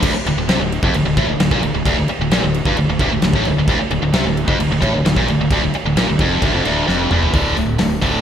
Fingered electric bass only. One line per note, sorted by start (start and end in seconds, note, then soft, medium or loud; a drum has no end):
0.03 0.13 D1 loud
0.14 muted fingered electric bass stroke soft
0.26 0.36 D1 medium
0.37 0.47 D1 medium
0.49 0.59 C2 medium
0.60 0.81 D1 medium
0.83 0.93 F1 loud
0.94 1.05 D1 medium
1.05 1.16 D1 medium
1.17 1.28 A1 medium
1.28 1.39 D1 medium
1.40 1.51 D1 medium
1.52 1.62 A#1 medium
1.63 1.73 D1 medium
1.73 1.84 D1 medium
1.86 1.96 D1 loud
1.97 2.08 D1 medium
2.08 muted fingered electric bass stroke soft
2.19 2.30 D1 medium
2.30 2.41 A#1 medium
2.42 2.63 D1 medium
2.66 2.76 G1 medium
2.76 2.87 D1 medium
2.88 2.99 D1 medium
3.00 3.10 D1 loud
3.12 3.22 D1 medium
3.22 3.33 D1 medium
3.34 3.44 A1 loud
3.45 3.56 D1 medium
3.57 3.67 D1 medium
3.68 3.79 D1 medium
3.79 muted fingered electric bass stroke soft
3.90 4.01 D1 medium
4.02 4.12 D1 medium
4.13 4.24 C2 medium
4.25 4.47 D1 medium
4.48 4.58 F1 loud
4.59 4.69 D1 medium
4.70 4.81 D1 medium
4.82 4.93 A1 loud
4.93 5.04 D1 medium
5.04 5.16 D1 medium
5.16 5.27 A#1 medium
5.27 5.38 D1 medium
5.38 5.50 D1 medium
5.51 5.61 D1 loud
5.62 5.73 D1 medium
5.74 muted fingered electric bass stroke soft
5.85 5.96 D1 medium
5.96 6.07 A#1 medium
6.08 6.19 D1 medium
6.19 6.41 F1 medium
6.42 6.53 D1 medium
6.54 6.65 F1 loud
6.66 6.87 D1 loud
6.88 7.10 F1 loud
7.11 7.33 E1 medium
7.34 7.54 D1 loud
7.57 7.77 D1 medium
7.80 8.00 D1 medium
8.03 8.21 D1 medium